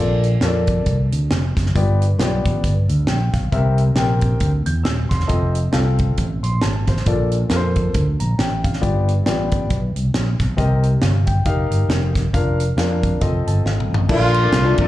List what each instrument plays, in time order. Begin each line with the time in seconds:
Already playing: fingered electric bass A#1, grand piano A#2 A#3 A4
0.00 grand piano F4 D5
0.23 closed hi-hat
0.41 fingered electric bass F2, grand piano A#3 F4 A4 C#5, snare, closed hi-hat
0.48 grand piano D5
0.67 kick, closed hi-hat
0.86 fingered electric bass C2, kick, closed hi-hat
1.12 fingered electric bass D2, closed hi-hat
1.30 fingered electric bass F1, snare, closed hi-hat
1.56 fingered electric bass F#1, kick, snare, closed hi-hat
1.66 snare
1.75 fingered electric bass G1, grand piano G2 B3 F4 G4 D5, kick, closed hi-hat
2.02 closed hi-hat
2.18 fingered electric bass B1, grand piano B3 F4 G4 C#5, snare, closed hi-hat
2.24 grand piano D5
2.45 fingered electric bass A1, kick, closed hi-hat
2.64 fingered electric bass G1, kick, closed hi-hat
2.89 fingered electric bass D2, closed hi-hat
3.07 fingered electric bass A#1, grand piano G5, snare, closed hi-hat
3.33 fingered electric bass B1, grand piano F5, kick, snare, closed hi-hat
3.52 fingered electric bass C2, grand piano C3 C4 G4 A#4 E5, kick, closed hi-hat
3.78 closed hi-hat
3.95 fingered electric bass A#1, grand piano C4 G4 A#4 G5, snare, closed hi-hat
4.21 kick, closed hi-hat
4.40 fingered electric bass D2, kick, closed hi-hat
4.66 fingered electric bass E2, grand piano G6, closed hi-hat
4.83 fingered electric bass D#1, grand piano E6, snare, closed hi-hat
5.09 fingered electric bass E1, grand piano C6, kick, snare, closed hi-hat
5.20 snare
5.27 fingered electric bass F1, grand piano C4 F4 A4 D#5, kick, closed hi-hat
5.55 closed hi-hat
5.72 fingered electric bass C2, grand piano C4 F4 A4 F5, snare, closed hi-hat
5.99 kick, closed hi-hat
6.17 fingered electric bass A1, kick, closed hi-hat
6.43 fingered electric bass A#1, grand piano C6, closed hi-hat
6.62 fingered electric bass G#1, grand piano A5, snare, closed hi-hat
6.87 fingered electric bass A1, grand piano C5, kick, snare, closed hi-hat
6.97 snare
7.06 fingered electric bass A#1, grand piano A#2 A#3 F4 A4 D5, kick, closed hi-hat
7.32 closed hi-hat
7.50 fingered electric bass F2, grand piano A#3 F4 A4 A#4, snare, closed hi-hat
7.56 grand piano C5
7.76 kick, closed hi-hat
7.94 fingered electric bass D2, kick, closed hi-hat
8.20 fingered electric bass A#1, grand piano A#5, closed hi-hat
8.38 fingered electric bass A1, grand piano G5, snare, closed hi-hat
8.64 grand piano F5, kick, closed hi-hat
8.73 snare
8.81 fingered electric bass G1, grand piano G2 B3 F4 G4 D5, kick, closed hi-hat
9.09 closed hi-hat
9.26 fingered electric bass A1, grand piano B3 F4 G4 D5, snare, closed hi-hat
9.51 kick, closed hi-hat
9.70 fingered electric bass B1, kick, closed hi-hat
9.96 fingered electric bass C2, closed hi-hat
10.14 fingered electric bass A#1, snare, closed hi-hat
10.40 fingered electric bass B1, kick, snare, closed hi-hat
10.57 fingered electric bass C2, grand piano C3 C4 G4 A#4 D#5, kick, closed hi-hat
10.83 closed hi-hat
11.02 fingered electric bass G1, grand piano F5, snare, closed hi-hat
11.26 grand piano G5, kick, closed hi-hat
11.45 fingered electric bass F1, grand piano D#4 G4 A#4 F5, kick, closed hi-hat
11.70 fingered electric bass G1, closed hi-hat
11.88 fingered electric bass F1, snare, closed hi-hat
12.15 kick, snare, closed hi-hat
12.33 fingered electric bass F1, grand piano D4 F4 A#4 F5, kick, closed hi-hat
12.60 closed hi-hat
12.77 fingered electric bass F2, grand piano D4 F4 A#4 F5, snare, closed hi-hat
13.03 kick, closed hi-hat
13.21 fingered electric bass F1, grand piano C4 F4 A4 D#5, kick, closed hi-hat
13.47 fingered electric bass G1, grand piano A5, closed hi-hat
13.65 fingered electric bass G#1, grand piano F5, snare
13.80 mid tom
13.89 fingered electric bass A1
13.94 floor tom
14.09 fingered electric bass A#1, grand piano A#2 A#3 D4 F4 A4 D5, horn section A3 D4 F4, kick, crash
14.34 ride bell
14.43 grand piano A#3 D4 F4 A4 D5
14.53 fingered electric bass C2, snare, ride bell
14.64 grand piano A#2 D4 F4 A4 D5
14.78 fingered electric bass A#1, horn section D4 F4 A4, kick, ride bell